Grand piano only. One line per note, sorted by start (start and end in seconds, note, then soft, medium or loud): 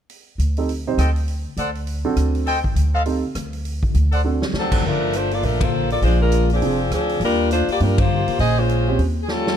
0.58 0.68 C4 medium
0.58 0.68 D#4 soft
0.58 0.68 G4 soft
0.58 0.68 A4 medium
0.87 0.97 C4 medium
0.87 0.97 D#4 medium
0.87 0.97 G4 medium
0.87 0.97 C5 medium
2.05 2.44 C4 medium
2.05 2.44 D4 medium
2.05 2.44 F#4 medium
2.05 2.44 A4 medium
3.06 3.22 C4 medium
3.06 3.22 D#4 soft
3.06 3.22 G4 soft
3.06 3.22 A4 medium
4.24 4.40 C4 soft
4.24 4.40 D4 soft
4.24 4.41 F#4 soft
4.24 4.41 A4 medium
6.62 6.78 C4 medium
6.62 6.78 D4 soft
6.62 6.78 F4 soft
6.62 6.78 G#4 medium
7.81 7.97 A#3 medium
7.81 7.97 D4 medium
7.81 7.97 F4 soft
7.81 7.97 G4 medium
8.88 8.98 C4 medium
8.88 8.98 C#4 medium
8.88 8.98 F4 soft
8.88 8.99 G4 medium